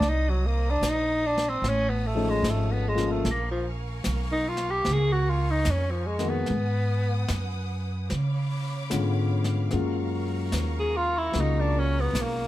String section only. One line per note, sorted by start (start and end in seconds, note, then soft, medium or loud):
0.00 1.60 D#5 medium
0.00 3.21 D#6 medium
0.06 1.63 C5 medium
0.06 1.64 A#5 medium
1.65 3.24 C#5 medium
1.65 6.45 F5 medium
1.65 3.24 A5 medium
3.23 6.44 A#4 medium
3.23 8.05 G#5 medium
3.23 6.44 C#6 medium
6.45 8.07 B4 medium
6.45 8.08 F#5 medium
6.45 8.07 D#6 medium
8.08 9.69 C#5 medium
8.08 12.47 F5 medium
8.08 9.69 B5 medium
8.08 9.69 D6 medium
9.71 12.47 A#4 medium
9.71 12.47 A#5 medium
9.71 12.47 C#6 medium